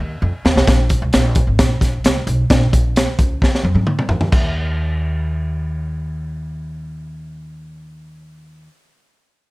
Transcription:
0.00 0.15 D#2 loud
0.22 0.30 F2 loud
0.45 0.53 D#2 loud
0.45 snare loud
0.56 0.64 C2 medium
0.56 snare loud
0.67 0.92 A#1 loud
0.67 kick loud
0.67 snare loud
0.67 closed hi-hat medium
0.89 kick loud
0.89 closed hi-hat medium
1.02 1.10 C2 loud
1.13 1.38 A#1 loud
1.13 snare loud
1.13 closed hi-hat medium
1.35 kick loud
1.35 closed hi-hat medium
1.47 1.55 G#1 medium
1.59 1.75 A#1 loud
1.59 kick loud
1.59 snare loud
1.59 closed hi-hat loud
1.81 1.98 A#1 medium
1.81 kick medium
1.81 snare soft
1.81 closed hi-hat medium
2.04 2.21 C2 medium
2.04 snare loud
2.04 closed hi-hat loud
2.27 2.43 B1 loud
2.27 closed hi-hat medium
2.50 2.66 A#1 loud
2.50 kick loud
2.50 snare loud
2.50 closed hi-hat medium
2.73 3.06 A#1 medium
2.73 kick medium
2.73 closed hi-hat medium
2.96 snare loud
2.96 closed hi-hat medium
3.19 3.43 C#2 medium
3.19 kick loud
3.19 closed hi-hat medium
3.42 kick medium
3.42 snare medium
3.55 snare medium
3.63 3.72 F2 medium
3.63 high tom medium
3.75 4.00 G#2 medium
3.75 high tom medium
3.87 mid tom medium
3.99 mid tom medium
4.09 4.25 E2 medium
4.09 floor tom loud
4.21 floor tom loud
4.32 8.67 D#2 loud
4.32 kick loud
4.32 crash medium

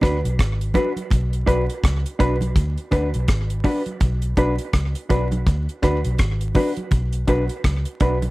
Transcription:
0.01 0.22 D2 medium
0.01 0.16 D4 medium
0.01 0.18 D4 medium
0.01 0.17 F#4 medium
0.01 0.19 F#4 medium
0.01 0.17 B4 loud
0.01 0.19 B4 medium
0.01 kick medium
0.01 cross-stick medium
0.01 closed hi-hat medium
0.01 low conga medium
0.25 0.38 B1 medium
0.25 closed hi-hat medium
0.39 0.72 G#1 medium
0.39 kick loud
0.39 cross-stick loud
0.39 closed hi-hat medium
0.61 closed hi-hat medium
0.74 0.89 D4 medium
0.74 0.91 D4 medium
0.74 0.89 F#4 medium
0.74 0.91 F#4 medium
0.74 0.89 B4 medium
0.74 0.92 B4 medium
0.74 kick medium
0.74 closed hi-hat medium
0.74 high conga medium
0.74 low conga medium
0.96 closed hi-hat soft
0.96 high conga medium
1.10 1.45 B1 medium
1.10 kick loud
1.10 closed hi-hat medium
1.10 low conga medium
1.33 closed hi-hat medium
1.46 1.67 B1 medium
1.46 1.61 D4 medium
1.46 1.63 D4 medium
1.46 1.61 F#4 medium
1.46 1.64 F#4 medium
1.46 1.61 B4 medium
1.46 1.64 B4 loud
1.46 kick medium
1.46 closed hi-hat medium
1.70 closed hi-hat medium
1.83 2.03 C#2 medium
1.83 kick loud
1.83 cross-stick loud
1.83 closed hi-hat medium
1.83 high conga soft
2.06 closed hi-hat medium
2.19 2.53 B1 medium
2.19 2.36 D4 medium
2.19 2.34 D4 medium
2.19 2.36 F#4 medium
2.19 2.34 F#4 medium
2.19 2.34 B4 medium
2.19 2.36 B4 loud
2.19 kick medium
2.19 closed hi-hat medium
2.40 muted clean electric guitar stroke soft
2.40 closed hi-hat soft
2.40 high conga medium
2.56 2.76 D2 loud
2.56 kick loud
2.56 closed hi-hat medium
2.56 low conga medium
2.77 closed hi-hat soft
2.91 3.12 D2 medium
2.91 3.08 D4 medium
2.91 3.06 D4 medium
2.91 3.08 F#4 medium
2.91 3.07 F#4 medium
2.91 3.09 B4 loud
2.91 3.07 B4 medium
2.91 kick medium
2.91 closed hi-hat medium
2.91 low conga medium
3.14 3.28 B1 medium
3.14 closed hi-hat medium
3.28 3.62 G#1 medium
3.28 kick loud
3.28 cross-stick loud
3.28 closed hi-hat medium
3.50 closed hi-hat medium
3.64 3.79 D4 medium
3.64 3.81 D4 medium
3.64 3.81 F#4 medium
3.64 3.79 F#4 medium
3.64 3.79 B4 medium
3.64 3.81 B4 medium
3.64 kick medium
3.64 open hi-hat medium
3.64 high conga medium
3.64 low conga medium
3.86 closed hi-hat medium
3.86 high conga medium
4.00 4.35 B1 loud
4.00 kick loud
4.00 closed hi-hat medium
4.00 low conga medium
4.22 closed hi-hat soft
4.37 4.57 B1 medium
4.37 4.54 D4 medium
4.37 4.52 D4 medium
4.37 4.54 F#4 medium
4.37 4.52 F#4 medium
4.37 4.54 B4 loud
4.37 4.52 B4 medium
4.37 kick medium
4.37 closed hi-hat medium
4.58 closed hi-hat medium
4.73 4.93 C#2 medium
4.73 kick loud
4.73 cross-stick loud
4.73 closed hi-hat medium
4.73 high conga soft
4.95 closed hi-hat medium
5.09 5.44 B1 medium
5.09 5.24 D4 medium
5.09 5.26 D4 medium
5.09 5.24 F#4 medium
5.09 5.27 F#4 medium
5.09 5.24 B4 medium
5.09 5.27 B4 medium
5.09 kick medium
5.09 closed hi-hat medium
5.31 muted clean electric guitar stroke soft
5.31 closed hi-hat soft
5.31 high conga medium
5.47 5.66 D2 loud
5.47 kick loud
5.47 closed hi-hat medium
5.47 low conga medium
5.69 closed hi-hat soft
5.82 6.02 D2 medium
5.82 5.99 D4 medium
5.82 5.97 D4 medium
5.82 5.99 F#4 medium
5.82 5.97 F#4 medium
5.82 5.99 B4 loud
5.82 5.97 B4 medium
5.82 kick medium
5.82 cross-stick medium
5.82 closed hi-hat medium
5.82 low conga medium
6.04 6.18 B1 medium
6.04 closed hi-hat medium
6.18 6.53 G#1 medium
6.18 kick loud
6.18 cross-stick loud
6.18 closed hi-hat medium
6.41 closed hi-hat medium
6.55 6.71 D4 medium
6.55 6.70 D4 medium
6.55 6.71 F#4 medium
6.55 6.70 F#4 medium
6.55 6.72 B4 medium
6.55 6.70 B4 medium
6.55 kick medium
6.55 open hi-hat medium
6.55 high conga medium
6.55 low conga medium
6.77 closed hi-hat soft
6.77 high conga medium
6.91 7.25 B1 loud
6.91 kick loud
6.91 closed hi-hat medium
6.91 low conga medium
7.13 closed hi-hat medium
7.27 7.48 B1 loud
7.27 7.44 D4 medium
7.27 7.42 D4 medium
7.27 7.44 F#4 medium
7.27 7.42 F#4 medium
7.27 7.45 B4 loud
7.27 7.43 B4 medium
7.27 kick medium
7.27 closed hi-hat medium
7.49 closed hi-hat medium
7.64 7.84 C#2 medium
7.64 kick loud
7.64 cross-stick loud
7.64 closed hi-hat medium
7.64 high conga soft
7.85 closed hi-hat medium
8.00 8.30 B1 medium
8.00 8.15 D4 medium
8.00 8.17 D4 medium
8.00 8.17 F#4 medium
8.00 8.15 F#4 medium
8.00 8.17 B4 medium
8.00 8.15 B4 medium
8.00 kick medium
8.00 closed hi-hat medium
8.22 muted clean electric guitar stroke soft
8.22 closed hi-hat soft
8.22 high conga medium

